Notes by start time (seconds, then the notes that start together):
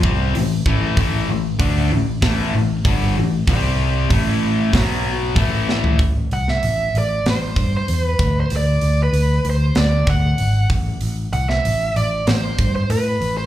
0.03 C2 C3 G3 C4, kick
0.35 A1 A2 E3, open hi-hat
0.66 A1 A2 E3 A3, kick
0.97 A1 A2 E3 A3, kick, open hi-hat
1.28 A1 A2 E3
1.59 D2 D3 A3 D4, kick, open hi-hat
1.92 A1 A2 E3
2.22 A1 A2 E3 A3, kick, snare, open hi-hat
2.54 A1 A2 E3
2.85 G1 G2 D3 G3, kick, open hi-hat
3.17 A1 A2 E3
3.48 C2 C3 G3 C4, kick, open hi-hat
4.10 A1 A2 E3 A3, kick, open hi-hat
4.72 B1 B2 F#3 B3, kick, snare, open hi-hat
5.35 A1 A2 E3 A3, kick, open hi-hat
5.69 snare
5.84 floor tom
5.99 A1, kick, open hi-hat
6.31 C2 F#5, open hi-hat
6.48 E5, snare
6.63 A1, open hi-hat
6.95 A1 D5, open hi-hat
7.26 A1 C5, snare, open hi-hat
7.56 G2, kick, open hi-hat
7.77 C5
7.88 E2, open hi-hat
7.93 B4
8.19 D2, kick, open hi-hat
8.40 C5
8.50 D2, open hi-hat
8.57 D5
8.81 D2, open hi-hat
9.03 B4
9.13 D2, open hi-hat
9.45 D2, open hi-hat
9.50 C5
9.75 D2 D5, snare, open hi-hat
10.07 D2 F#5, kick, open hi-hat
10.38 G#1, open hi-hat
10.70 A1, kick, open hi-hat
11.01 A1, open hi-hat
11.33 C2 F#5, open hi-hat
11.49 E5, snare
11.65 A1, open hi-hat
11.96 A1 D5, open hi-hat
12.27 A1 C5, snare, open hi-hat
12.58 G2, kick, open hi-hat
12.76 C5
12.90 A2 B4, open hi-hat
13.21 A1, open hi-hat
13.38 C5